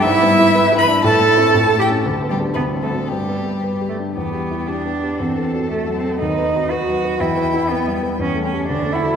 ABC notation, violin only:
X:1
M:2/4
L:1/8
Q:1/4=118
K:G
V:1 name="Violin"
e3 b | a3 g | z G B A | G3 z |
[K:Em] G4 | A4 | B4 | g4 |
[K:Amix] z g z f |]